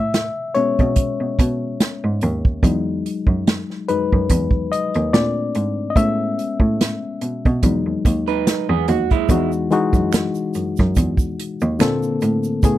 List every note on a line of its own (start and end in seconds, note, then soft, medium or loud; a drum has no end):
0.00 2.64 E5 medium
0.14 snare loud
0.14 closed hi-hat medium
0.55 0.72 B2 soft
0.55 1.12 G#3 medium
0.55 1.12 B3 soft
0.55 1.12 C#4 medium
0.55 2.17 C#5 medium
0.55 closed hi-hat soft
0.79 0.94 B2 medium
0.79 kick medium
0.79 closed hi-hat soft
0.96 kick medium
0.96 closed hi-hat medium
1.20 1.33 B2 soft
1.39 1.73 B2 medium
1.39 kick medium
1.39 closed hi-hat medium
1.80 snare medium
1.80 closed hi-hat medium
2.04 2.19 G#2 medium
2.21 2.57 D#2 medium
2.21 closed hi-hat medium
2.45 kick medium
2.63 2.98 E2 medium
2.63 3.88 F#3 soft
2.63 3.88 G#3 soft
2.63 3.89 D#4 medium
2.63 kick loud
2.63 closed hi-hat medium
3.06 closed hi-hat soft
3.27 3.43 F#2 medium
3.27 kick medium
3.47 snare loud
3.47 closed hi-hat medium
3.70 snare soft
3.88 4.06 F#2 soft
3.88 4.26 F#3 soft
3.88 4.26 G#3 soft
3.88 4.26 D#4 medium
3.88 4.74 B4 medium
3.88 closed hi-hat soft
4.12 4.28 F#2 medium
4.12 kick medium
4.29 4.65 E2 medium
4.29 kick medium
4.29 closed hi-hat medium
4.51 kick medium
4.72 5.14 D#5 medium
4.72 closed hi-hat medium
4.94 5.10 D#2 medium
4.94 closed hi-hat soft
5.13 5.48 A#2 medium
5.13 5.70 A3 soft
5.13 5.70 C4 soft
5.13 5.71 D4 medium
5.13 5.92 D5 medium
5.13 snare medium
5.13 closed hi-hat medium
5.55 5.90 G#2 medium
5.55 closed hi-hat medium
5.90 5.96 D#5 medium
5.96 6.31 A2 medium
5.96 7.59 G#3 soft
5.96 7.60 B3 soft
5.96 7.60 C#4 medium
5.96 6.76 E5 medium
5.96 kick loud
5.96 closed hi-hat medium
6.39 closed hi-hat medium
6.60 6.76 A2 medium
6.60 kick medium
6.81 snare loud
6.81 closed hi-hat medium
7.21 7.38 B2 soft
7.21 closed hi-hat medium
7.45 7.61 B2 medium
7.45 kick medium
7.45 closed hi-hat soft
7.63 7.82 E2 medium
7.63 9.26 F#3 soft
7.63 9.26 G#3 soft
7.63 9.26 D#4 medium
7.63 kick medium
7.63 closed hi-hat medium
7.86 8.00 D#2 soft
8.05 8.40 D#2 medium
8.05 kick medium
8.05 closed hi-hat medium
8.27 8.67 D#4 medium
8.27 8.67 B4 medium
8.27 closed hi-hat soft
8.47 snare loud
8.47 closed hi-hat medium
8.69 8.85 E2 medium
8.69 8.87 B3 medium
8.69 8.87 G#4 medium
8.88 9.23 D#2 medium
8.88 9.10 F#4 medium
8.88 closed hi-hat medium
9.10 9.51 G#3 medium
9.10 9.51 E4 medium
9.10 kick medium
9.10 closed hi-hat soft
9.29 9.64 E2 medium
9.29 9.65 E3 medium
9.29 9.65 G#3 medium
9.29 9.66 D#4 medium
9.29 9.66 F#4 medium
9.29 kick loud
9.29 closed hi-hat medium
9.29 shaker medium
9.52 shaker soft
9.71 11.13 E3 medium
9.71 11.13 G#3 medium
9.71 11.13 D#4 medium
9.71 11.14 F#4 medium
9.71 closed hi-hat soft
9.71 shaker soft
9.93 10.09 F#2 medium
9.93 kick medium
9.93 closed hi-hat soft
9.93 shaker soft
10.13 finger snap medium
10.13 snare loud
10.13 closed hi-hat medium
10.13 shaker medium
10.35 shaker soft
10.54 10.72 F#2 soft
10.54 closed hi-hat soft
10.54 shaker soft
10.77 10.94 F#2 medium
10.77 kick medium
10.77 snare soft
10.77 closed hi-hat soft
10.77 shaker soft
10.95 11.31 E2 medium
10.95 kick medium
10.95 closed hi-hat medium
10.95 shaker medium
11.17 kick medium
11.17 shaker soft
11.40 closed hi-hat medium
11.61 11.77 D#2 medium
11.61 shaker soft
11.79 12.15 A#2 medium
11.79 12.51 D3 medium
11.79 12.51 A#3 medium
11.79 12.51 C4 medium
11.79 12.52 A4 medium
11.79 finger snap medium
11.79 snare loud
11.79 closed hi-hat medium
11.79 shaker medium
12.03 shaker soft
12.21 12.56 A2 medium
12.21 closed hi-hat medium
12.21 shaker soft
12.44 shaker soft
12.63 12.78 A2 medium
12.63 12.78 C#3 medium
12.63 12.78 A3 medium
12.63 12.78 B3 medium
12.63 12.78 G#4 medium
12.63 kick loud
12.63 closed hi-hat medium
12.63 shaker medium